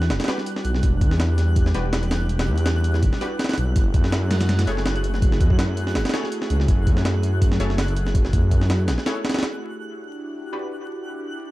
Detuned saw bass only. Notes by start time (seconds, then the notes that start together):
Already playing: E2
0.10 E1
0.65 B1
0.83 E1
1.01 E2
1.75 E1
2.48 E2
3.03 E1
3.57 B1
3.76 F#1
3.94 F#2
4.67 F#1
5.40 F#2
5.95 F#1
6.50 C#2
6.68 F#1
6.87 F#2
7.60 F#1
8.33 F#2
8.88 A1